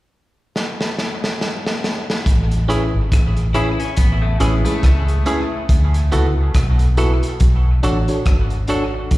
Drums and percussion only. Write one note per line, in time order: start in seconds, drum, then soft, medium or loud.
0.56 snare medium
0.81 snare medium
0.98 snare medium
1.24 snare medium
1.41 snare medium
1.66 snare medium
1.84 snare medium
2.10 snare medium
2.26 kick loud
2.26 closed hi-hat medium
2.51 closed hi-hat soft
2.70 closed hi-hat medium
3.12 kick loud
3.12 cross-stick medium
3.12 closed hi-hat medium
3.37 closed hi-hat soft
3.54 closed hi-hat medium
3.80 closed hi-hat soft
3.97 kick loud
3.97 closed hi-hat loud
4.40 closed hi-hat medium
4.65 closed hi-hat medium
4.83 kick loud
4.83 cross-stick loud
4.83 closed hi-hat medium
5.08 closed hi-hat soft
5.26 closed hi-hat medium
5.69 kick medium
5.69 closed hi-hat medium
5.94 closed hi-hat soft
6.12 closed hi-hat medium
6.54 kick loud
6.54 cross-stick medium
6.54 closed hi-hat medium
6.79 closed hi-hat soft
6.97 closed hi-hat medium
7.23 closed hi-hat soft
7.40 kick loud
7.40 closed hi-hat medium
7.83 closed hi-hat medium
8.08 closed hi-hat medium
8.26 kick loud
8.26 cross-stick loud
8.26 closed hi-hat medium
8.50 closed hi-hat soft
8.68 closed hi-hat medium
9.11 kick loud
9.11 closed hi-hat medium